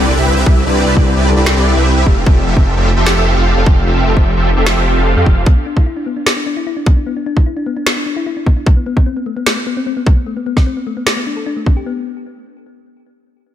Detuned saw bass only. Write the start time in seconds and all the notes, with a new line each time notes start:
Already playing: C2
0.17 C2
0.37 C2
0.46 C2
0.66 C2
0.86 C2
0.97 C2
1.17 C2
1.37 C2
1.57 C2
1.77 C2
1.97 C2
2.06 F1
2.27 F1
2.47 F1
2.57 F1
2.77 F1
2.97 F1
3.17 F1
3.37 F1
3.57 F1
3.66 F1
3.87 F1
4.07 F1
4.17 F1
4.37 F1
4.57 F1
4.77 F1
4.97 F1
5.17 F2
5.26 F1